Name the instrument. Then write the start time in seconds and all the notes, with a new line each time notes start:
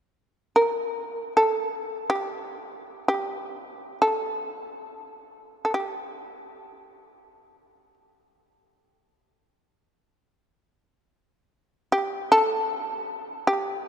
shamisen
0.56 A#4
1.37 A4
2.10 G4
3.08 G4
4.02 A4
5.65 A4
5.74 G4
11.92 G4
12.32 A4
13.47 G4